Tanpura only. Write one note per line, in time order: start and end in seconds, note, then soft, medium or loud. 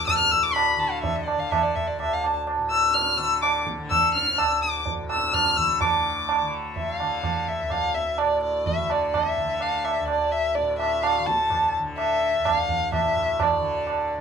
0.00 1.97 D2 medium
0.00 0.15 A2 medium
0.00 0.76 D3 medium
0.16 2.57 A2 medium
0.76 1.37 D3 medium
1.37 3.18 D3 medium
1.97 4.38 D2 medium
2.58 4.98 A2 medium
3.18 3.78 D3 medium
3.78 5.58 D3 medium
4.39 7.60 D2 medium
4.98 5.82 A2 medium
5.58 6.41 D3 medium
5.82 8.21 A2 soft
6.41 7.01 D3 medium
7.01 8.80 D3 medium
7.60 9.99 D2 medium
8.21 10.59 A2 medium
8.80 9.40 D3 medium
9.40 11.19 D3 medium
10.00 12.38 D2 medium
10.60 12.97 A2 medium
11.19 11.79 D3 medium
11.79 13.58 D3 medium
12.38 14.21 D2 medium
12.98 14.21 A2 medium
13.58 14.18 D3 medium
14.18 14.21 D3 medium